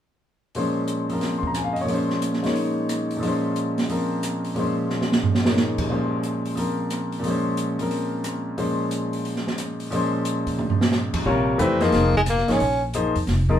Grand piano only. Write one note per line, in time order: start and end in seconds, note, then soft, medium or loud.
0.55 1.81 A#2 soft
0.55 1.08 F3 soft
0.55 1.87 G#3 soft
0.55 1.89 C#4 soft
0.55 1.90 C5 soft
1.10 1.84 F3 soft
1.10 1.89 C4 soft
1.10 1.90 A#4 soft
1.38 1.49 C6 soft
1.47 1.59 A#5 soft
1.56 1.70 G#5 soft
1.64 1.78 F5 soft
1.73 1.83 D#5 soft
1.81 3.15 A#2 soft
1.81 1.92 C#5 soft
1.85 3.18 F3 soft
1.85 2.41 G#3 soft
1.91 3.24 C#4 soft
1.91 3.25 C5 medium
2.43 3.21 G#3 soft
2.43 3.22 A#3 soft
2.43 3.22 D#4 soft
2.43 3.23 C#5 soft
3.17 4.53 A#2 soft
3.17 3.87 F3 soft
3.23 4.55 G#3 soft
3.23 4.57 C#4 soft
3.28 4.58 C5 soft
3.88 4.54 F3 soft
3.88 4.57 C4 soft
3.88 4.57 A#4 soft
4.55 5.88 A#2 soft
4.55 5.88 F3 soft
4.55 5.42 G#3 soft
4.59 5.90 C#4 soft
4.59 5.90 C5 soft
5.44 5.89 G#3 soft
5.44 5.90 A#3 soft
5.44 5.91 D#4 soft
5.44 5.91 C#5 soft
5.90 7.18 A#2 soft
5.90 6.54 F3 soft
5.90 7.24 G#3 soft
5.90 7.25 C#4 soft
5.90 7.25 C5 soft
6.55 7.21 F3 soft
6.55 7.24 C4 soft
6.55 7.25 A#4 soft
7.19 8.56 A#2 soft
7.19 7.77 F3 soft
7.25 8.56 G#3 soft
7.25 8.57 C#4 soft
7.30 8.57 C5 medium
7.79 8.56 F3 soft
7.79 8.58 C4 soft
7.79 8.59 A#4 soft
8.58 9.89 A#2 soft
8.58 9.90 F3 soft
8.58 9.91 G#3 soft
8.58 9.92 C#4 soft
8.58 9.92 C5 soft
9.90 11.25 A#2 medium
9.90 11.26 F3 soft
9.90 11.26 G#3 soft
9.90 11.27 C#4 soft
9.96 11.28 C5 medium
11.26 11.58 C3 soft
11.26 11.58 G3 soft
11.26 11.58 F4 soft
11.26 11.59 A#4 medium
11.26 11.59 C#5 medium
11.58 11.78 E3 medium
11.58 11.79 A3 medium
11.58 11.79 D4 medium
11.58 11.79 G4 medium
11.58 11.79 B4 medium
11.81 12.10 F3 medium
11.81 12.10 A#3 medium
11.81 12.10 D#4 medium
11.81 12.11 G#4 medium
11.81 12.10 C5 medium
12.48 12.58 F3 soft
12.48 12.59 A#3 soft
12.48 12.59 D#4 soft
12.48 12.59 G#4 soft
12.48 12.59 C#5 soft
12.94 13.13 F3 medium
12.94 13.13 A#3 soft
12.94 13.14 D#4 soft
12.94 13.13 G#4 soft
12.94 13.14 C5 medium
13.49 13.59 F3 medium
13.49 13.59 A#3 soft
13.49 13.59 D#4 medium
13.49 13.59 G#4 soft
13.49 13.59 A#4 medium